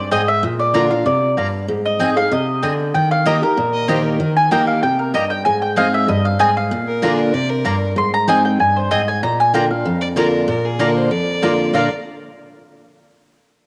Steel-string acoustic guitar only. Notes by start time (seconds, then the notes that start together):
Already playing: G2
0.12 G#2
0.43 A#2
0.74 D3 A#3 D4 F4
0.90 D4 F4
1.06 C3
1.37 G2
1.68 G#2
1.99 G#3 C4 D#4 G#4
2.16 D#4 G#4
2.31 C3
2.63 D3
2.95 D#3
3.26 D#3 A#3 D#4 G4
3.42 D#4 G4
3.57 A#2
3.88 D#3 A#3 D#4 G4
4.20 D#3
4.51 D#3 A#3 D#4 G4
4.83 C3
5.14 G2
5.46 G#2
5.77 G#3 C4 D#4 G#4
6.08 G2
6.40 G#2
6.71 A#2
7.02 D3 A#3 D4 F4
7.34 C3
7.65 G2
7.96 G#2
8.27 G#3 C4 D#4 G#4
8.59 G2
8.91 G#2
9.23 A#2
9.54 D3 A#3 D4 F4
9.70 D4 F4
9.86 F2
10.16 D3 A#3 D4 F4
10.48 A#2
10.79 D3 A#3 D4 F4
11.11 F2
11.42 D3 A#3 D4 F4
11.73 A#2 D3 A#3 D4 F4